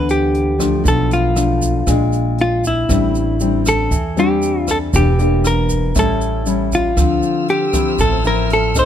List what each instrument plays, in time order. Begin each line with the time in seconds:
Already playing: upright bass D2, nylon-string guitar D3 E3 B3 D4
0.09 hollow-body jazz guitar G4, closed hi-hat, shaker
0.34 closed hi-hat
0.58 nylon-string guitar F3 A3 D4, kick, cross-stick, closed hi-hat, shaker
0.84 upright bass B1, nylon-string guitar B2, kick, closed hi-hat, shaker
0.88 hollow-body jazz guitar A4
1.11 hollow-body jazz guitar F4, closed hi-hat, shaker
1.36 nylon-string guitar F3 A3 D4, cross-stick, closed hi-hat, shaker
1.62 kick, closed hi-hat, shaker
1.87 upright bass A#1, nylon-string guitar A#2 G#3 D4, kick, cross-stick, closed hi-hat, shaker
2.12 closed hi-hat, shaker
2.38 hollow-body jazz guitar F4, closed hi-hat
2.64 hollow-body jazz guitar E4, kick, closed hi-hat, shaker
2.89 upright bass A1, nylon-string guitar A2 G3 C4 D4, kick, cross-stick, closed hi-hat, shaker
3.15 closed hi-hat, shaker
3.40 nylon-string guitar G3 C4 D4, closed hi-hat, shaker
3.66 hollow-body jazz guitar A4, kick, cross-stick, closed hi-hat, shaker
3.91 upright bass E2, nylon-string guitar E3, kick, closed hi-hat, shaker
4.16 nylon-string guitar G3 C4 D4, hollow-body jazz guitar G4, closed hi-hat, shaker
4.42 closed hi-hat, shaker
4.68 hollow-body jazz guitar A4, kick, cross-stick, closed hi-hat, shaker
4.93 upright bass E1, nylon-string guitar E3 A#3 D4 G4, hollow-body jazz guitar G4, kick, closed hi-hat, shaker
5.19 nylon-string guitar A#3 D4 G4, closed hi-hat, shaker
5.44 hollow-body jazz guitar A#4, cross-stick, closed hi-hat, shaker
5.70 kick, closed hi-hat, shaker
5.95 upright bass A1, nylon-string guitar A2 G3 C#4 E4, kick, cross-stick, closed hi-hat, shaker
5.99 hollow-body jazz guitar A4
6.21 closed hi-hat, shaker
6.46 nylon-string guitar G3 C#4 E4, closed hi-hat, shaker
6.72 hollow-body jazz guitar F4, kick, closed hi-hat, shaker
6.96 upright bass D2, nylon-string guitar D3 F3 C4, string section C5 E6 F6, kick, cross-stick, closed hi-hat, shaker
7.22 closed hi-hat, shaker
7.48 hollow-body jazz guitar G4, closed hi-hat
7.73 nylon-string guitar F3 C4 E4, kick, cross-stick, shaker
7.99 upright bass A1, nylon-string guitar A2, hollow-body jazz guitar A4, kick, closed hi-hat, shaker
8.24 nylon-string guitar F3 C4 E4, hollow-body jazz guitar A#4, closed hi-hat, shaker
8.50 hollow-body jazz guitar A4, closed hi-hat
8.75 nylon-string guitar C4 D#4 A4, kick, cross-stick, shaker
8.79 hollow-body jazz guitar C5